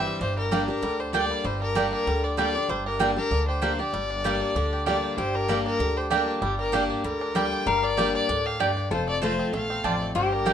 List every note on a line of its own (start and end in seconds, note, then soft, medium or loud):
0.00 0.18 G2 medium
0.00 0.19 E3 loud
0.00 0.20 G3 loud
0.00 0.18 C4 medium
0.00 0.20 C4 medium
0.00 0.20 E4 medium
0.00 1.14 G4 medium
0.00 0.19 E5 loud
0.07 0.37 G3 medium
0.21 0.68 G1 loud
0.21 0.80 G2 medium
0.21 0.51 D4 medium
0.21 0.37 C5 loud
0.38 0.83 G3 medium
0.38 0.67 A#4 loud
0.51 0.68 G3 medium
0.51 0.61 A#3 medium
0.51 0.68 A#3 loud
0.51 0.69 D4 medium
0.51 0.68 D4 medium
0.51 0.62 G4 medium
0.51 0.67 G4 medium
0.51 0.62 D5 medium
0.51 0.62 G5 loud
0.68 0.99 D4 medium
0.68 0.83 D4 soft
0.68 0.82 G4 medium
0.68 1.01 A#4 loud
0.82 1.30 D2 medium
0.82 1.42 D3 medium
0.82 1.30 G3 medium
1.00 1.61 D4 soft
1.00 1.13 C5 medium
1.13 1.43 G3 medium
1.13 1.23 A#3 medium
1.13 1.44 A#3 loud
1.13 1.44 D4 loud
1.13 1.24 G4 medium
1.13 1.92 G4 medium
1.13 1.44 G4 loud
1.13 1.46 D5 loud
1.13 1.24 D5 loud
1.13 1.24 G5 loud
1.31 1.45 G3 soft
1.44 1.92 G1 loud
1.44 2.04 G2 medium
1.44 2.07 G3 medium
1.44 1.61 C5 loud
1.62 1.76 D4 medium
1.62 1.91 A#4 loud
1.75 2.05 G3 loud
1.75 1.85 A#3 medium
1.75 2.06 A#3 medium
1.75 2.23 D4 medium
1.75 2.06 D4 medium
1.75 1.86 G4 medium
1.75 2.06 G4 medium
1.75 1.86 D5 loud
1.75 1.86 G5 loud
1.93 3.33 G4 medium
1.93 2.25 A#4 loud
2.07 2.54 D2 medium
2.07 2.66 D3 medium
2.07 2.38 G3 medium
2.24 2.55 D4 medium
2.24 2.37 D5 medium
2.37 2.54 G3 medium
2.37 2.69 G3 medium
2.37 2.48 A#3 medium
2.37 2.54 A#3 medium
2.37 2.55 D4 medium
2.37 2.48 G4 medium
2.37 2.54 G4 medium
2.37 2.71 D5 loud
2.37 2.48 D5 loud
2.37 2.48 G5 medium
2.55 2.86 D4 soft
2.55 2.70 D4 medium
2.55 2.69 G4 medium
2.69 3.17 G1 loud
2.69 3.29 G2 medium
2.69 3.00 G3 medium
2.69 2.86 C5 medium
2.86 3.17 D4 medium
2.86 3.15 A#4 medium
2.99 3.16 G3 medium
2.99 3.93 G3 medium
2.99 3.10 A#3 loud
2.99 3.16 A#3 loud
2.99 3.17 D4 loud
2.99 3.10 G4 medium
2.99 3.15 G4 loud
2.99 3.10 D5 loud
2.99 3.10 G5 medium
3.17 3.32 D4 medium
3.17 3.31 D4 soft
3.17 3.31 G4 medium
3.17 3.46 A#4 loud
3.31 3.79 D2 medium
3.31 3.91 D3 medium
3.31 3.63 D4 medium
3.48 3.79 G4 medium
3.48 3.80 C5 medium
3.62 3.78 G3 medium
3.62 3.72 A#3 medium
3.62 3.78 A#3 medium
3.62 4.10 D4 medium
3.62 3.79 D4 medium
3.62 3.72 G4 loud
3.62 3.78 G4 medium
3.62 3.72 D5 medium
3.62 3.72 G5 loud
3.79 3.94 D4 soft
3.79 3.93 G4 medium
3.79 4.72 G4 medium
3.79 4.86 D5 loud
3.93 4.41 G1 loud
3.93 4.53 G2 medium
3.93 4.24 G3 medium
4.10 4.41 D4 medium
4.24 4.54 G3 medium
4.24 5.17 G3 medium
4.24 4.34 A#3 medium
4.24 4.54 A#3 medium
4.24 4.55 D4 loud
4.24 4.34 G4 medium
4.24 4.55 G4 loud
4.24 4.35 D5 medium
4.24 4.35 G5 loud
4.41 4.56 D4 medium
4.55 5.03 D2 medium
4.55 5.15 D3 medium
4.55 4.87 D4 medium
4.73 5.03 G4 medium
4.86 5.16 G3 loud
4.86 4.96 A#3 medium
4.86 5.16 A#3 medium
4.86 5.35 D4 medium
4.86 5.17 D4 medium
4.86 4.96 G4 medium
4.86 5.17 G4 medium
4.86 4.96 D5 loud
4.86 5.16 D5 medium
4.86 4.97 G5 loud
5.04 5.96 G4 soft
5.17 5.65 G1 loud
5.17 5.77 G2 medium
5.17 5.49 G3 medium
5.17 7.62 G4 medium
5.17 5.36 C5 loud
5.35 5.66 D4 medium
5.35 5.65 A#4 loud
5.48 5.78 G3 medium
5.48 6.41 G3 medium
5.48 5.58 A#3 medium
5.48 5.79 A#3 loud
5.48 5.79 D4 medium
5.48 5.59 G4 medium
5.48 5.79 G4 medium
5.48 5.59 D5 medium
5.48 5.59 G5 loud
5.66 5.80 D4 medium
5.66 5.99 A#4 loud
5.80 6.27 D2 medium
5.80 6.39 D3 medium
5.80 6.11 D4 medium
5.97 6.27 G4 soft
5.97 6.11 C5 medium
6.10 6.40 G3 medium
6.10 6.20 A#3 medium
6.10 6.41 A#3 medium
6.10 6.59 D4 medium
6.10 6.41 D4 medium
6.10 6.21 G4 medium
6.10 6.41 G4 loud
6.10 6.40 A#4 medium
6.10 6.21 D5 medium
6.10 6.21 G5 loud
6.28 6.90 G4 soft
6.42 6.90 G1 loud
6.42 7.01 G2 medium
6.42 7.04 G3 medium
6.42 6.58 G4 medium
6.59 6.72 D4 medium
6.59 6.75 A#4 loud
6.72 7.02 G3 medium
6.72 6.83 A#3 medium
6.72 7.03 A#3 loud
6.72 7.18 D4 medium
6.72 7.03 D4 medium
6.72 6.83 G4 medium
6.72 7.04 G4 medium
6.72 7.03 G4 loud
6.72 6.83 D5 loud
6.72 6.83 G5 medium
6.90 7.32 G4 medium
7.04 7.52 D2 medium
7.04 7.64 D3 medium
7.04 7.35 G3 medium
7.04 7.38 A#4 medium
7.21 7.51 D4 medium
7.35 7.65 G3 medium
7.35 7.66 G3 medium
7.35 7.45 A#3 medium
7.35 7.65 A#3 medium
7.35 7.65 D4 medium
7.35 7.45 G4 medium
7.35 7.66 G4 medium
7.35 7.45 D5 medium
7.35 7.45 G5 medium
7.35 7.69 G5 loud
7.52 7.82 D4 soft
7.66 8.14 G1 loud
7.66 8.26 G2 medium
7.66 7.96 G3 medium
7.66 8.91 A#4 loud
7.66 7.85 F5 loud
7.83 8.14 D4 medium
7.83 8.14 D5 loud
7.97 8.27 G3 loud
7.97 8.42 G3 medium
7.97 8.07 A#3 medium
7.97 8.27 A#3 medium
7.97 8.28 D4 medium
7.97 8.07 G4 loud
7.97 8.28 G4 loud
7.97 8.07 D5 medium
7.97 8.08 G5 loud
8.15 8.28 D4 medium
8.15 8.47 D5 loud
8.29 8.76 D2 medium
8.29 8.59 A2 medium
8.29 8.59 D4 medium
8.46 8.76 G4 medium
8.46 8.62 F5 loud
8.59 8.90 G2 loud
8.59 8.69 A#3 medium
8.59 8.91 D4 medium
8.59 8.70 G4 medium
8.59 8.91 D5 loud
8.59 8.70 D5 loud
8.59 8.70 G5 loud
8.77 8.91 G4 soft
8.91 9.39 F1 loud
8.91 9.50 F2 medium
8.91 9.21 F4 medium
8.91 9.97 A4 loud
8.91 9.07 C5 loud
9.08 9.50 A3 medium
9.08 9.22 D5 loud
9.22 9.51 F3 loud
9.22 9.52 A3 medium
9.22 9.32 C4 medium
9.22 9.52 C4 loud
9.22 9.32 F4 medium
9.22 9.67 F4 medium
9.22 9.53 F4 loud
9.22 9.32 C5 loud
9.22 9.51 C5 medium
9.22 9.32 A5 loud
9.39 9.69 C4 medium
9.53 9.79 A#1 medium
9.53 9.83 E2 medium
9.53 9.98 A3 medium
9.53 9.87 F5 loud
9.70 10.13 C4 medium
9.84 10.11 A1 medium
9.84 10.14 F2 medium
9.84 9.94 C4 medium
9.84 9.94 F4 medium
9.84 10.15 G4 medium
9.84 9.94 C5 medium
9.84 10.15 D5 loud
9.84 9.94 A5 medium
10.01 10.15 A3 medium
10.15 10.53 G1 loud
10.15 10.53 G2 medium
10.15 10.53 G3 medium
10.15 10.53 G4 loud
10.15 10.34 C5 loud
10.32 10.45 D4 medium
10.32 10.53 A#4 loud
10.45 10.53 G3 medium
10.45 10.53 A#3 medium
10.45 10.53 D4 medium
10.45 10.53 D4 loud
10.45 10.53 G4 medium
10.45 10.53 G4 loud
10.45 10.53 D5 loud
10.45 10.53 G5 loud